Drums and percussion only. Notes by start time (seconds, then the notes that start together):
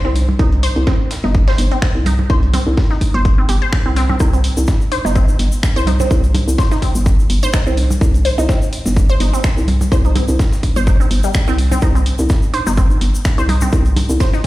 0.15 closed hi-hat, open hi-hat, high conga
0.29 low conga
0.39 kick, closed hi-hat
0.52 closed hi-hat, high conga
0.63 closed hi-hat, open hi-hat
0.76 closed hi-hat
0.87 kick, snare, closed hi-hat, high conga
1.11 snare, open hi-hat
1.24 snare, high conga
1.35 kick, closed hi-hat
1.48 snare, open hi-hat
1.58 snare, open hi-hat, high conga
1.71 closed hi-hat
1.82 finger snap, kick, snare, closed hi-hat
1.95 high conga
2.06 closed hi-hat, open hi-hat, low conga
2.19 low conga
2.30 kick, closed hi-hat, high conga
2.43 closed hi-hat
2.53 closed hi-hat, open hi-hat, low conga
2.67 high conga
2.77 kick, snare, open hi-hat
2.91 snare
3.01 kick, closed hi-hat, open hi-hat, high conga
3.25 kick, closed hi-hat
3.38 high conga
3.49 closed hi-hat, open hi-hat
3.73 finger snap, kick, snare, closed hi-hat, high conga
3.96 snare, closed hi-hat, open hi-hat
4.10 high conga, low conga
4.20 kick, closed hi-hat, high conga, shaker
4.33 closed hi-hat, shaker
4.44 closed hi-hat, open hi-hat
4.57 closed hi-hat, high conga, shaker
4.67 kick, snare, closed hi-hat, shaker
4.81 shaker
4.92 closed hi-hat, open hi-hat, high conga
5.05 snare, shaker
5.15 kick, closed hi-hat, shaker
5.28 high conga, shaker
5.39 snare, closed hi-hat, open hi-hat
5.52 shaker
5.63 finger snap, kick, snare, closed hi-hat, high conga, shaker
5.77 shaker
5.87 closed hi-hat, open hi-hat, low conga
6.00 high conga, low conga, shaker
6.11 kick, closed hi-hat, shaker
6.24 closed hi-hat, shaker
6.35 closed hi-hat, open hi-hat, high conga, low conga
6.48 shaker
6.58 kick, snare, open hi-hat, shaker
6.71 snare, high conga, shaker
6.82 kick, closed hi-hat, open hi-hat
6.95 shaker
7.06 kick, closed hi-hat, high conga, shaker
7.19 shaker
7.30 closed hi-hat, open hi-hat
7.43 high conga, shaker
7.53 finger snap, kick, snare, closed hi-hat, shaker
7.67 shaker
7.77 closed hi-hat, open hi-hat, high conga
7.91 low conga, shaker
8.01 kick, closed hi-hat, shaker
8.14 closed hi-hat, high conga, shaker
8.25 closed hi-hat, open hi-hat
8.38 closed hi-hat, shaker
8.49 kick, snare, closed hi-hat, high conga, shaker
8.62 shaker
8.73 closed hi-hat, open hi-hat
8.86 snare, high conga, shaker
8.96 kick, closed hi-hat, shaker
9.09 shaker
9.20 snare, closed hi-hat, open hi-hat, high conga
9.34 shaker
9.44 finger snap, kick, snare, closed hi-hat, shaker
9.57 high conga, shaker
9.68 closed hi-hat, open hi-hat, low conga
9.81 low conga, shaker
9.92 kick, closed hi-hat, high conga, shaker
10.05 closed hi-hat, shaker
10.15 closed hi-hat, open hi-hat, low conga
10.28 high conga, shaker
10.39 kick, snare, open hi-hat, shaker
10.52 snare, shaker
10.63 kick, closed hi-hat, open hi-hat, high conga
10.76 shaker
10.87 kick, closed hi-hat, shaker
11.00 high conga, shaker
11.11 closed hi-hat, open hi-hat
11.23 shaker
11.34 finger snap, kick, snare, closed hi-hat, high conga, shaker
11.48 shaker
11.58 closed hi-hat, open hi-hat
11.71 high conga, low conga, shaker
11.82 kick, closed hi-hat, high conga, shaker
11.95 closed hi-hat, shaker
12.06 closed hi-hat, open hi-hat
12.19 closed hi-hat, high conga, shaker
12.29 kick, snare, closed hi-hat, shaker
12.42 shaker
12.54 closed hi-hat, open hi-hat, high conga
12.67 snare, shaker
12.77 kick, closed hi-hat, shaker
12.90 high conga, shaker
13.01 snare, closed hi-hat, open hi-hat
13.15 shaker
13.25 finger snap, kick, snare, closed hi-hat, high conga, shaker
13.39 shaker
13.49 closed hi-hat, open hi-hat, low conga
13.61 high conga, low conga, shaker
13.72 kick, closed hi-hat, shaker
13.85 closed hi-hat, shaker
13.96 closed hi-hat, open hi-hat, high conga, low conga
14.09 shaker
14.20 kick, snare, open hi-hat, shaker
14.33 snare, high conga, shaker